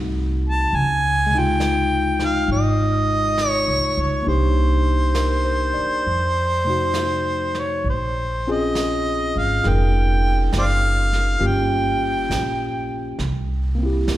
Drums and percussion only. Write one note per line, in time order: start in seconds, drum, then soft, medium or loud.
0.72 brush sweep soft
1.60 snare soft
1.60 hi-hat pedal soft
2.19 snare soft
2.49 brush sweep soft
3.38 snare soft
3.38 hi-hat pedal soft
4.26 brush sweep soft
5.15 snare soft
5.15 hi-hat pedal soft
6.04 brush sweep soft
6.94 snare soft
6.94 hi-hat pedal soft
7.55 snare soft
7.85 brush sweep soft
8.75 snare soft
8.75 hi-hat pedal soft
9.64 brush sweep soft
9.64 snare soft
10.53 snare soft
10.53 hi-hat pedal soft
11.13 snare soft
11.41 brush sweep soft
12.31 snare soft
12.31 hi-hat pedal medium
13.19 brush sweep soft
13.19 snare soft
14.08 snare soft
14.08 hi-hat pedal soft